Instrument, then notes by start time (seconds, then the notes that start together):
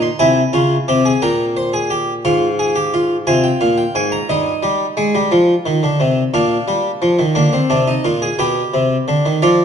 harpsichord
0.02 C6
0.19 C3 E4 G#5
0.53 C#3 F4
0.88 C3 G4
1.05 G#4
1.22 A#2 A#4 G5
1.57 C5
1.73 G#4
1.90 G4
2.25 G#2 F4 F5
2.59 G#4
2.76 G4
2.94 F4
3.27 C3 F4 G#5
3.44 G5
3.61 A#2 F5
3.78 G5
3.95 G#2 G#5
4.12 A#5
4.29 G2 D#4 D#5
4.63 G3
4.97 G#3
5.15 G3
5.32 F3
5.66 D#3
5.83 D3
6.00 C3
6.34 A#2 D4 F5
6.68 G3
7.02 F3
7.19 D#3
7.35 D3 A#3
7.53 C4
7.70 C3 D4
7.87 D#4
8.04 A#2 F4
8.22 G#4
8.39 B2 G4 G5
8.74 C3
9.08 D3
9.26 D#3
9.42 F3 F4 D5